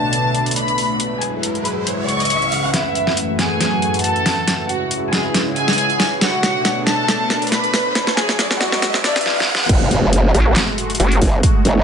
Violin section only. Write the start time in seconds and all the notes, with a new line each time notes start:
Already playing: A5
0.56 B5
1.21 G#5
1.65 B5
2.08 C#6
2.74 E4 E5
3.39 G#4 G#5
4.04 A4 A5
4.69 F#4 F#5
5.13 G#4 G#5
5.56 G#4 G#5
6.21 F#4 F#5
6.87 A4 A5
7.52 B4 B5
8.17 G#4 G#5
8.61 F#4 F#5
9.04 D4 D5